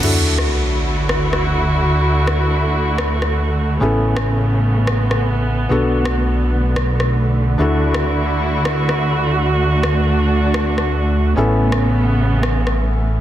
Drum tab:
CC |x---------------|----------------|----------------|----------------|
SD |---r-----r-r----|---r-----r-r----|---r-----r-r----|---r-----r-r----|

CC |----------------|----------------|----------------|
SD |---r-----r-r----|---r-----r-r----|---r-----r-r----|